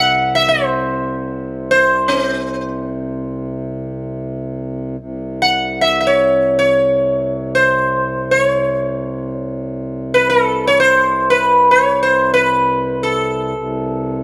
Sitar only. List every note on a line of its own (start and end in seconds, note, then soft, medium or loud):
0.00 0.35 F#5 loud
0.35 0.50 E5 medium
0.49 1.70 C5 medium
1.71 2.10 C5 medium
2.08 3.23 C4 medium
5.42 5.81 F#5 medium
5.81 5.99 E5 medium
6.00 6.07 E5 medium
6.07 6.58 C#5 medium
6.59 7.54 C#5 medium
7.55 8.31 C5 medium
8.31 8.42 C5 medium
8.42 9.30 C#5 medium
10.14 10.29 B4 medium
10.30 10.67 A4 medium
10.67 10.79 C#5 medium
10.80 11.30 C5 medium
11.30 11.71 B4 medium
11.71 12.02 C#5 medium
12.03 12.33 C5 medium
12.34 13.03 B4 medium
13.03 14.23 A4 medium